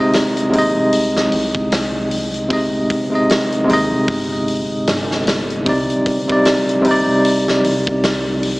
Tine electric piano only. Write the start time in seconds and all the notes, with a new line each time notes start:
Already playing: C3 G#3
0.00 D#4 D#5
0.49 C3 G#3
0.55 D#4 D#5
2.48 C3 G#3 D#4
2.53 D#5
3.11 C3 G#3 D#4
3.15 D#5
3.65 C3 G#3
3.71 D#4 D#5
5.65 C3 G3 D#4
5.69 D5
6.27 C3 G3 D#4
6.32 D5
6.82 C3 G3
6.88 D#4 D5